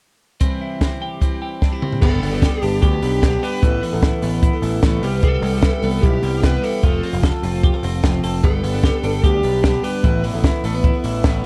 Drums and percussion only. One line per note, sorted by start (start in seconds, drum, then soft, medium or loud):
0.41 kick medium
0.41 closed hi-hat medium
0.81 kick loud
0.81 snare loud
0.81 closed hi-hat medium
1.22 kick medium
1.22 closed hi-hat medium
1.62 kick medium
1.62 snare soft
1.82 mid tom medium
1.92 floor tom medium
2.02 kick loud
2.02 crash medium
2.23 open hi-hat medium
2.42 kick loud
2.42 snare loud
2.42 closed hi-hat medium
2.62 open hi-hat medium
2.83 kick loud
2.83 closed hi-hat medium
3.02 open hi-hat medium
3.23 kick loud
3.23 snare medium
3.23 closed hi-hat medium
3.43 open hi-hat medium
3.63 kick loud
3.63 closed hi-hat medium
3.83 open hi-hat medium
4.03 kick loud
4.03 snare loud
4.03 closed hi-hat medium
4.22 open hi-hat medium
4.43 kick loud
4.43 closed hi-hat medium
4.63 open hi-hat medium
4.83 kick loud
4.83 snare loud
4.83 closed hi-hat medium
5.03 open hi-hat medium
5.23 kick loud
5.23 closed hi-hat medium
5.43 open hi-hat medium
5.62 kick loud
5.62 snare loud
5.62 closed hi-hat medium
5.82 open hi-hat medium
6.03 kick loud
6.03 closed hi-hat medium
6.23 open hi-hat medium
6.43 kick loud
6.43 snare medium
6.43 closed hi-hat medium
6.64 open hi-hat medium
6.84 kick loud
6.84 closed hi-hat medium
7.03 open hi-hat medium
7.23 kick loud
7.23 snare loud
7.23 closed hi-hat medium
7.43 open hi-hat medium
7.63 kick loud
7.63 closed hi-hat medium
7.83 open hi-hat medium
8.04 kick loud
8.04 snare loud
8.04 closed hi-hat medium
8.24 open hi-hat medium
8.44 kick loud
8.44 closed hi-hat medium
8.64 open hi-hat medium
8.84 kick loud
8.84 snare loud
8.84 closed hi-hat medium
9.04 open hi-hat medium
9.24 kick loud
9.24 closed hi-hat medium
9.43 open hi-hat medium
9.64 kick loud
9.64 snare loud
9.64 closed hi-hat medium
9.84 open hi-hat medium
10.04 kick loud
10.04 closed hi-hat medium
10.24 open hi-hat medium
10.44 kick loud
10.44 snare loud
10.44 closed hi-hat medium
10.64 open hi-hat medium
10.84 kick loud
10.84 closed hi-hat medium
11.04 open hi-hat medium
11.24 kick loud
11.24 snare loud
11.24 closed hi-hat medium